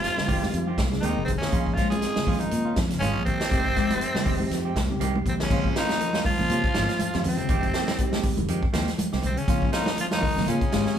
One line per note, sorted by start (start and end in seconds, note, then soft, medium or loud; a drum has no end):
0.00 0.14 F3 medium
0.00 0.88 F3 medium
0.00 0.16 G#3 medium
0.00 0.15 C4 medium
0.00 0.16 D#4 medium
0.00 0.86 F4 loud
0.00 0.16 G4 medium
0.00 snare soft
0.00 closed hi-hat medium
0.04 high conga soft
0.17 0.26 C#3 medium
0.17 muted fingered electric bass stroke soft
0.17 snare medium
0.17 high conga medium
0.27 0.40 F1 medium
0.27 0.44 D#3 medium
0.27 0.40 D#3 medium
0.27 0.44 G#3 medium
0.27 0.44 C4 medium
0.27 0.44 G4 medium
0.27 kick medium
0.27 open hi-hat medium
0.27 high conga medium
0.27 low conga medium
0.41 0.63 G3 medium
0.41 0.70 G#3 medium
0.41 0.70 C4 medium
0.41 0.70 D#4 medium
0.41 0.70 G4 medium
0.41 snare soft
0.41 high conga medium
0.54 0.74 F2 medium
0.54 closed hi-hat medium
0.54 high conga soft
0.67 0.88 D#3 medium
0.67 0.82 G#3 soft
0.67 0.81 C4 medium
0.67 0.81 G4 medium
0.78 0.98 C2 medium
0.78 kick medium
0.78 snare medium
0.78 closed hi-hat medium
0.78 high conga medium
0.91 1.01 C#3 medium
0.91 1.48 G#3 medium
0.91 1.49 C4 medium
0.91 1.49 D#4 medium
0.91 1.49 G#4 medium
0.91 snare soft
1.00 1.14 D#2 medium
1.00 1.25 D#3 medium
1.00 1.19 D#3 medium
1.00 1.15 D#3 medium
1.00 1.19 G#3 medium
1.00 1.19 C4 medium
1.00 1.24 D#4 medium
1.00 closed hi-hat medium
1.00 high conga medium
1.04 1.20 G4 medium
1.17 1.37 F1 medium
1.17 1.38 C3 medium
1.25 1.32 C4 medium
1.25 kick medium
1.25 closed hi-hat medium
1.25 low conga medium
1.29 1.35 C3 medium
1.38 1.76 C#4 medium
1.38 low conga medium
1.42 1.78 C#3 medium
1.42 snare medium
1.52 2.04 A#1 medium
1.52 1.73 F3 medium
1.52 1.68 G#3 medium
1.52 1.69 C#4 medium
1.52 1.69 F4 medium
1.52 kick loud
1.52 closed hi-hat medium
1.52 high conga soft
1.66 kick medium
1.74 1.90 F3 medium
1.74 1.94 G#3 medium
1.74 1.90 G#3 medium
1.74 1.94 C#4 medium
1.74 1.89 F4 medium
1.74 kick medium
1.74 snare soft
1.74 closed hi-hat medium
1.78 1.94 F4 medium
1.90 2.12 F3 medium
1.90 2.43 G#3 medium
1.90 1.98 G#3 medium
1.90 1.98 C4 medium
1.90 1.98 C#4 medium
1.90 1.98 F4 medium
1.90 2.41 G#4 medium
1.90 closed hi-hat soft
1.90 high conga medium
2.02 2.18 G#3 medium
2.02 2.18 C4 medium
2.02 2.18 C#4 medium
2.02 2.18 F4 medium
2.02 snare soft
2.02 closed hi-hat medium
2.02 high conga soft
2.16 2.26 C#3 medium
2.16 muted fingered electric bass stroke soft
2.16 snare medium
2.16 high conga medium
2.26 2.38 A#1 medium
2.26 2.39 D#3 medium
2.26 2.43 G#3 medium
2.26 2.86 G#3 medium
2.26 2.86 C4 medium
2.26 2.86 C#4 medium
2.26 2.43 C#4 medium
2.26 2.86 F4 medium
2.26 2.44 F4 medium
2.26 kick medium
2.26 open hi-hat medium
2.26 high conga medium
2.26 low conga medium
2.39 2.75 D#3 medium
2.39 2.61 F3 medium
2.39 2.74 D#4 medium
2.39 closed hi-hat medium
2.51 2.72 A#2 medium
2.51 closed hi-hat medium
2.51 high conga soft
2.65 2.86 D#3 medium
2.65 2.80 C#4 soft
2.65 2.79 F4 medium
2.76 2.97 F2 medium
2.76 kick medium
2.76 snare medium
2.76 closed hi-hat medium
2.76 high conga medium
2.90 2.99 C#3 medium
2.90 snare soft
2.90 closed hi-hat soft
2.99 3.13 G#1 medium
2.99 3.25 C#3 medium
2.99 3.13 D#3 medium
2.99 3.17 G#3 medium
2.99 3.24 C#4 loud
2.99 3.18 F4 medium
2.99 muted clean electric guitar stroke medium
2.99 closed hi-hat medium
2.99 high conga medium
3.15 3.36 A#1 medium
3.15 muted clean electric guitar stroke medium
3.25 4.97 C3 medium
3.25 4.96 C4 loud
3.25 kick medium
3.25 closed hi-hat soft
3.25 low conga medium
3.41 snare medium
3.41 closed hi-hat medium
3.51 4.03 F1 medium
3.51 3.67 D#3 medium
3.51 3.72 F3 medium
3.51 3.67 G#3 medium
3.51 3.68 G#3 medium
3.51 3.67 C4 medium
3.51 3.68 C4 medium
3.51 3.67 D#4 medium
3.51 3.67 G4 medium
3.51 3.68 G4 medium
3.51 kick loud
3.51 snare soft
3.51 closed hi-hat medium
3.51 high conga soft
3.65 kick medium
3.76 3.92 D#3 medium
3.76 3.88 G#3 medium
3.76 4.14 G#3 medium
3.76 3.92 G#3 medium
3.76 4.14 C4 medium
3.76 3.93 C4 medium
3.76 4.14 D#4 medium
3.76 4.14 G4 medium
3.76 3.93 G4 medium
3.76 kick medium
3.76 snare soft
3.76 closed hi-hat medium
3.89 4.11 F3 medium
3.89 closed hi-hat medium
3.89 high conga loud
4.01 closed hi-hat medium
4.01 high conga soft
4.15 4.24 C#3 medium
4.15 muted fingered electric bass stroke soft
4.15 snare medium
4.15 high conga medium
4.25 4.37 F1 medium
4.25 4.37 D#3 medium
4.25 4.42 D#3 medium
4.25 4.42 G#3 medium
4.25 4.42 C4 medium
4.25 4.43 G4 medium
4.25 kick medium
4.25 open hi-hat medium
4.25 low conga medium
4.40 4.61 F3 medium
4.40 4.69 G#3 medium
4.40 4.69 C4 medium
4.40 4.68 D#4 medium
4.40 4.69 G4 medium
4.40 high conga medium
4.51 4.71 F2 medium
4.51 snare soft
4.51 closed hi-hat medium
4.51 high conga soft
4.65 4.79 G#3 soft
4.65 4.79 C4 soft
4.65 4.79 G4 medium
4.65 muted clean electric guitar stroke medium
4.76 4.96 C2 medium
4.76 kick medium
4.76 snare medium
4.76 closed hi-hat medium
4.76 high conga loud
4.90 4.99 C#3 medium
4.90 5.47 G#3 medium
4.90 5.47 C4 medium
4.90 5.47 D#4 medium
4.90 5.47 G4 loud
5.00 5.23 C2 medium
5.00 5.17 D#3 medium
5.00 5.13 D#3 medium
5.00 5.17 G#3 medium
5.00 5.17 C4 medium
5.00 5.17 G4 medium
5.00 closed hi-hat medium
5.00 high conga medium
5.15 5.36 C3 medium
5.15 high conga medium
5.26 5.48 A#1 medium
5.26 5.34 C4 medium
5.26 kick medium
5.26 closed hi-hat medium
5.26 low conga medium
5.30 5.35 C3 medium
5.40 5.75 C#3 medium
5.40 5.74 C#4 medium
5.40 snare medium
5.40 low conga medium
5.50 5.71 A#1 medium
5.50 5.71 C#3 medium
5.50 5.67 G#3 medium
5.50 6.10 G#3 medium
5.50 6.10 C4 medium
5.50 5.67 C#4 medium
5.50 6.10 C#4 medium
5.50 5.67 F4 medium
5.50 6.10 F4 medium
5.50 kick loud
5.50 crash medium
5.50 high conga soft
5.64 kick medium
5.76 5.97 D#3 medium
5.76 6.24 D#3 medium
5.76 5.92 G#3 medium
5.76 5.92 C#4 medium
5.76 6.23 D#4 medium
5.76 5.93 F4 medium
5.76 snare medium
5.76 closed hi-hat soft
5.89 snare medium
5.89 closed hi-hat soft
5.89 high conga medium
6.00 6.12 F3 medium
6.00 closed hi-hat medium
6.00 high conga soft
6.13 6.35 F3 medium
6.13 6.29 C#4 soft
6.13 6.28 F4 medium
6.13 snare medium
6.13 closed hi-hat soft
6.13 high conga medium
6.25 7.21 F4 loud
6.25 kick medium
6.25 open hi-hat medium
6.25 high conga medium
6.25 low conga medium
6.29 7.23 F3 loud
6.38 6.48 A#1 medium
6.38 6.49 C#3 medium
6.38 high conga medium
6.50 6.61 A#2 medium
6.50 6.71 C#3 medium
6.50 6.66 G#3 medium
6.50 6.67 G#3 medium
6.50 6.66 C4 medium
6.50 6.66 C#4 medium
6.50 6.67 C#4 medium
6.50 6.67 F4 medium
6.50 6.66 G4 medium
6.50 closed hi-hat medium
6.50 high conga soft
6.64 muted fingered electric bass stroke soft
6.64 kick medium
6.64 closed hi-hat soft
6.74 6.87 G#1 medium
6.74 6.96 F3 medium
6.74 6.97 G#3 medium
6.74 6.91 G#3 soft
6.74 6.97 C4 medium
6.74 6.97 C#4 medium
6.74 6.92 C#4 medium
6.74 6.97 F4 medium
6.74 6.92 F4 medium
6.74 snare medium
6.74 closed hi-hat medium
6.74 high conga loud
6.89 snare soft
6.89 closed hi-hat soft
6.99 7.12 F3 medium
6.99 muted fingered electric bass stroke soft
6.99 closed hi-hat medium
6.99 high conga medium
7.13 7.23 F2 medium
7.13 7.35 D#3 medium
7.13 7.20 G#3 medium
7.13 7.20 C4 medium
7.13 7.20 C#4 medium
7.13 7.28 C#4 soft
7.13 7.28 F4 medium
7.13 7.20 G4 medium
7.13 snare soft
7.13 closed hi-hat soft
7.24 7.37 F2 medium
7.24 7.47 G#3 medium
7.24 7.47 C4 medium
7.24 8.22 C4 medium
7.24 7.47 C#4 medium
7.24 7.47 F4 medium
7.24 open hi-hat medium
7.24 low conga medium
7.29 8.22 C3 medium
7.38 7.48 C#3 medium
7.38 muted fingered electric bass stroke soft
7.38 closed hi-hat soft
7.38 low conga medium
7.49 7.70 F1 loud
7.49 7.65 D#3 medium
7.49 7.71 D#3 loud
7.49 7.66 G#3 medium
7.49 7.66 C4 medium
7.49 7.66 G4 medium
7.49 kick medium
7.49 closed hi-hat medium
7.49 high conga soft
7.62 7.84 G#3 medium
7.62 7.84 C4 medium
7.62 7.84 D#4 medium
7.62 7.84 G4 loud
7.62 kick medium
7.62 closed hi-hat soft
7.74 7.91 D#3 medium
7.74 7.95 F3 medium
7.74 7.91 G#3 medium
7.74 7.91 C4 medium
7.74 7.91 G4 medium
7.74 snare medium
7.74 closed hi-hat medium
7.87 snare medium
7.87 high conga loud
7.98 8.11 G3 medium
7.98 8.58 G#3 loud
7.98 8.58 C4 medium
7.98 8.58 D#4 medium
7.98 8.58 G4 loud
7.98 kick medium
7.98 closed hi-hat medium
7.98 high conga soft
8.13 8.34 G3 medium
8.13 8.28 G#3 soft
8.13 8.28 C4 soft
8.13 8.27 G4 medium
8.13 snare medium
8.13 closed hi-hat soft
8.13 high conga medium
8.23 kick medium
8.23 open hi-hat medium
8.23 low conga medium
8.37 8.47 F1 medium
8.37 8.48 D#3 medium
8.37 closed hi-hat soft
8.37 high conga medium
8.48 8.61 F2 medium
8.48 8.65 D#3 medium
8.48 8.70 D#3 medium
8.48 8.65 G#3 medium
8.48 8.65 C4 medium
8.48 8.66 G4 medium
8.48 closed hi-hat medium
8.48 high conga soft
8.63 muted fingered electric bass stroke soft
8.63 kick medium
8.73 8.85 D#2 medium
8.73 8.89 D#3 medium
8.73 8.94 F3 medium
8.73 8.90 G#3 medium
8.73 8.90 C4 medium
8.73 8.90 G4 medium
8.73 snare medium
8.73 closed hi-hat medium
8.73 high conga medium
8.88 snare soft
8.88 closed hi-hat soft
8.98 9.10 F3 medium
8.98 muted fingered electric bass stroke soft
8.98 closed hi-hat medium
8.98 high conga medium
9.12 9.22 C2 medium
9.12 9.33 D#3 medium
9.12 9.27 G#3 soft
9.12 9.27 C4 soft
9.12 9.26 G4 soft
9.12 snare soft
9.23 9.35 C2 medium
9.23 9.42 C3 medium
9.23 9.39 C4 medium
9.23 closed hi-hat soft
9.23 low conga medium
9.37 9.46 C#3 medium
9.37 9.75 C#3 medium
9.37 9.72 C#4 medium
9.37 muted fingered electric bass stroke soft
9.37 closed hi-hat soft
9.47 9.68 A#1 loud
9.47 9.69 C#3 medium
9.47 10.07 G#3 medium
9.47 10.07 C4 medium
9.47 9.65 C#4 medium
9.47 10.07 C#4 medium
9.47 10.07 F4 loud
9.47 9.65 F4 medium
9.47 muted clean electric guitar stroke medium
9.47 kick loud
9.47 closed hi-hat medium
9.47 high conga soft
9.62 kick medium
9.72 9.94 F3 medium
9.72 9.89 G#3 medium
9.72 9.89 C#4 medium
9.72 9.96 D#4 medium
9.72 9.89 F4 medium
9.72 snare medium
9.72 closed hi-hat medium
9.77 9.99 D#3 medium
9.86 snare medium
9.86 closed hi-hat soft
9.86 high conga loud
9.97 10.09 F3 medium
9.97 10.06 F4 medium
9.97 closed hi-hat medium
9.97 high conga soft
10.02 10.07 F3 medium
10.11 10.33 F3 medium
10.11 10.26 C#4 soft
10.11 10.46 D#4 medium
10.11 10.26 F4 medium
10.11 snare medium
10.11 closed hi-hat soft
10.11 high conga medium
10.17 10.48 D#3 medium
10.22 kick medium
10.22 open hi-hat medium
10.22 high conga medium
10.22 low conga loud
10.36 10.46 A#1 medium
10.36 10.45 C#3 medium
10.36 snare soft
10.36 high conga medium
10.46 10.60 A#2 loud
10.46 10.68 C#3 medium
10.46 10.64 G#3 soft
10.46 10.64 G#3 medium
10.46 10.63 C4 medium
10.46 10.64 C#4 medium
10.46 10.99 C#4 medium
10.46 10.64 F4 medium
10.46 closed hi-hat medium
10.46 high conga soft
10.52 10.99 C#3 medium
10.61 muted fingered electric bass stroke soft
10.61 kick medium
10.61 closed hi-hat soft
10.71 10.85 G#1 medium
10.71 10.93 G#3 medium
10.71 10.89 G#3 soft
10.71 10.95 G#3 medium
10.71 10.95 C4 medium
10.71 10.89 C#4 medium
10.71 10.95 C#4 medium
10.71 10.89 F4 medium
10.71 10.95 G4 medium
10.71 snare medium
10.71 closed hi-hat medium
10.71 high conga medium
10.86 snare soft
10.86 closed hi-hat soft